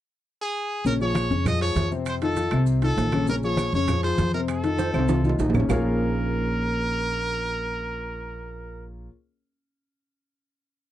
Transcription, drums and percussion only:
0.85 high conga, maracas
1.00 high conga, maracas
1.15 high conga, high timbale, low timbale, claves, maracas
1.30 high conga, maracas
1.46 high conga, low conga, high timbale, claves, maracas
1.61 high conga, high timbale, maracas
1.76 high conga, high timbale, low timbale, maracas
1.91 high conga, maracas
2.06 high conga, high timbale, claves, maracas
2.22 high conga, high timbale, maracas
2.36 high conga, high timbale, low timbale, maracas
2.51 high timbale, claves, maracas
2.66 high conga, maracas
2.82 high conga, high timbale, maracas
2.97 high conga, high timbale, low timbale, maracas
3.12 high conga, high timbale, claves, maracas
3.27 high conga, maracas
3.43 high conga, maracas
3.57 high conga, high timbale, low timbale, claves, maracas
3.73 high conga, maracas
3.88 high conga, low conga, high timbale, claves, maracas
4.03 high conga, high timbale, maracas
4.18 high conga, high timbale, low timbale, maracas
4.34 high conga, maracas
4.48 high conga, high timbale, claves, maracas
4.63 high conga, high timbale, maracas
4.78 high conga, high timbale, maracas
4.94 high conga, claves, maracas
4.99 high timbale
5.08 high conga, high timbale, maracas
5.24 high conga, maracas
5.29 low timbale
5.39 low timbale, maracas
5.50 low timbale
5.54 low conga, claves, maracas
5.60 low timbale
5.69 low conga, low timbale, claves, maracas

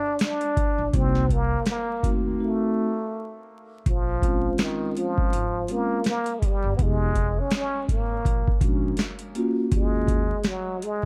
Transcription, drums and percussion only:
0.19 snare, closed hi-hat
0.41 closed hi-hat
0.57 kick, closed hi-hat
0.93 kick, closed hi-hat
1.15 snare
1.29 kick, closed hi-hat
1.66 snare, closed hi-hat
2.03 kick, closed hi-hat
3.86 kick, closed hi-hat
4.22 kick, closed hi-hat
4.58 snare, closed hi-hat
4.97 closed hi-hat
5.18 kick
5.33 closed hi-hat
5.68 closed hi-hat
6.04 snare, closed hi-hat
6.26 closed hi-hat
6.42 kick, closed hi-hat
6.79 kick, closed hi-hat
7.15 kick, closed hi-hat
7.51 snare, closed hi-hat
7.89 kick, closed hi-hat
8.25 kick, closed hi-hat
8.48 kick
8.61 kick, closed hi-hat
8.97 snare, closed hi-hat
9.19 closed hi-hat
9.35 closed hi-hat
9.72 kick, closed hi-hat
10.07 kick, closed hi-hat
10.44 snare, closed hi-hat
10.82 closed hi-hat

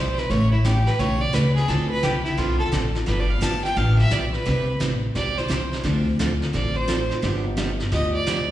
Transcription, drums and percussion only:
0.18 snare
0.30 brush sweep, snare
0.64 snare, hi-hat pedal
0.87 snare
0.99 brush sweep, snare
1.34 snare, hi-hat pedal
1.57 snare
1.68 brush sweep, snare
2.03 snare, hi-hat pedal
2.25 snare
2.38 brush sweep, snare
2.72 snare, hi-hat pedal
2.95 snare
3.07 brush sweep, snare
3.42 snare, hi-hat pedal
3.65 snare
3.76 brush sweep, snare
3.99 snare
4.11 snare, hi-hat pedal
4.33 snare
4.46 brush sweep, snare
4.80 snare, hi-hat pedal
5.15 brush sweep, snare
5.38 snare
5.50 snare, hi-hat pedal
5.73 snare
5.84 brush sweep, snare
6.19 snare, hi-hat pedal
6.42 snare
6.54 brush sweep, snare
6.88 snare, hi-hat pedal
7.11 snare
7.23 brush sweep, snare
7.57 snare, hi-hat pedal
7.79 snare
7.91 brush sweep, snare
8.27 snare, hi-hat pedal

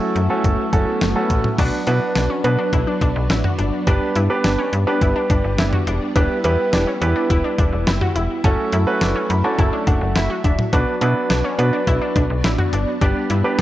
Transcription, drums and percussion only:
0.16 closed hi-hat
0.44 kick, closed hi-hat
0.73 kick, closed hi-hat
1.01 snare, closed hi-hat
1.30 kick, closed hi-hat
1.44 mid tom
1.58 kick, closed hi-hat, crash
1.87 closed hi-hat
2.16 snare, closed hi-hat
2.44 closed hi-hat
2.73 kick, closed hi-hat
3.01 kick, closed hi-hat
3.30 snare, closed hi-hat
3.44 mid tom
3.59 closed hi-hat
3.87 kick, closed hi-hat
4.15 closed hi-hat
4.44 snare, closed hi-hat
4.73 closed hi-hat
5.01 kick, closed hi-hat
5.30 kick, closed hi-hat
5.58 snare, closed hi-hat
5.73 mid tom
5.87 closed hi-hat
6.16 kick, closed hi-hat
6.44 closed hi-hat
6.73 snare, closed hi-hat
7.02 closed hi-hat
7.30 kick, closed hi-hat
7.59 kick, closed hi-hat
7.87 snare, closed hi-hat
8.01 mid tom
8.16 closed hi-hat
8.44 kick, closed hi-hat
8.73 closed hi-hat
9.01 snare, closed hi-hat
9.30 closed hi-hat
9.59 kick, closed hi-hat
9.87 kick, closed hi-hat
10.16 snare, closed hi-hat
10.44 kick, closed hi-hat
10.59 mid tom
10.73 kick, closed hi-hat
11.01 closed hi-hat
11.30 snare, closed hi-hat
11.59 closed hi-hat
11.87 kick, closed hi-hat
12.16 kick, closed hi-hat
12.44 snare, closed hi-hat
12.58 mid tom
12.73 closed hi-hat
13.01 kick, closed hi-hat
13.30 closed hi-hat

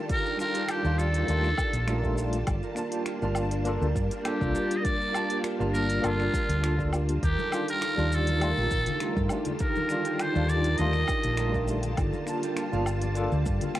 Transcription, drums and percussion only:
0.09 kick, closed hi-hat, shaker
0.26 shaker
0.39 finger snap, shaker
0.55 closed hi-hat, shaker
0.68 finger snap, closed hi-hat, low woodblock, shaker
0.85 shaker
0.99 shaker
1.14 closed hi-hat, shaker
1.28 closed hi-hat, shaker
1.44 finger snap, shaker
1.58 kick, low woodblock, shaker
1.73 closed hi-hat, shaker
1.88 finger snap, closed hi-hat, shaker
2.04 kick, shaker
2.18 shaker
2.33 closed hi-hat, shaker
2.47 kick, closed hi-hat, low woodblock, shaker
2.63 shaker
2.76 finger snap, shaker
2.92 closed hi-hat, shaker
3.06 finger snap, closed hi-hat, shaker
3.22 shaker
3.35 low woodblock, shaker
3.51 closed hi-hat, shaker
3.65 closed hi-hat, shaker
3.82 shaker
3.96 kick, shaker
4.11 closed hi-hat, shaker
4.25 finger snap, closed hi-hat, low woodblock, shaker
4.41 kick, shaker
4.55 shaker
4.71 closed hi-hat, shaker
4.85 kick, closed hi-hat, shaker
5.02 shaker
5.14 finger snap, low woodblock, shaker
5.30 closed hi-hat, shaker
5.44 finger snap, closed hi-hat, shaker
5.61 shaker
5.75 shaker
5.90 closed hi-hat, shaker
6.04 closed hi-hat, low woodblock, shaker
6.20 finger snap, shaker
6.34 kick, shaker
6.50 closed hi-hat, shaker
6.64 finger snap, closed hi-hat, shaker
6.79 kick, shaker
6.93 low woodblock, shaker
7.09 closed hi-hat, shaker
7.23 kick, closed hi-hat, shaker
7.39 high conga, shaker
7.52 finger snap, low woodblock, shaker
7.68 closed hi-hat, shaker
7.82 finger snap, closed hi-hat, shaker
7.98 high conga, shaker
8.12 shaker
8.27 closed hi-hat, high conga, shaker
8.41 closed hi-hat, low woodblock, shaker
8.57 shaker
8.71 kick, shaker
8.86 closed hi-hat, low conga, shaker
9.00 finger snap, closed hi-hat, shaker
9.16 kick, shaker
9.29 low woodblock, shaker
9.45 closed hi-hat, low conga, shaker
9.59 kick, closed hi-hat, shaker
9.76 high conga, shaker
9.89 finger snap, shaker
10.05 closed hi-hat, shaker
10.19 finger snap, closed hi-hat, low woodblock, shaker
10.35 high conga, shaker
10.49 shaker
10.64 closed hi-hat, high conga, shaker
10.78 closed hi-hat, shaker
10.93 finger snap, shaker
11.08 kick, low woodblock, shaker
11.23 closed hi-hat, shaker
11.37 finger snap, closed hi-hat, shaker
11.54 kick, shaker
11.68 shaker
11.83 closed hi-hat, shaker
11.97 kick, closed hi-hat, low woodblock, shaker
12.13 high conga, shaker
12.27 finger snap, shaker
12.43 closed hi-hat, shaker
12.57 finger snap, closed hi-hat, shaker
12.73 high conga, shaker
12.86 low woodblock, shaker
13.02 closed hi-hat, high conga, shaker
13.15 closed hi-hat, shaker
13.32 shaker
13.46 kick, shaker
13.61 closed hi-hat, low conga, shaker
13.75 finger snap, closed hi-hat, low woodblock, shaker

